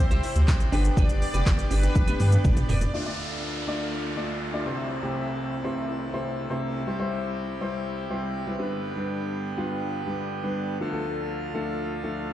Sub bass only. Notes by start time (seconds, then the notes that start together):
0.11 C2
0.36 D2
0.73 G1
0.97 G1
1.34 F1
1.47 G1
1.71 G1
2.08 G1
2.20 G2
2.45 G1
2.69 E1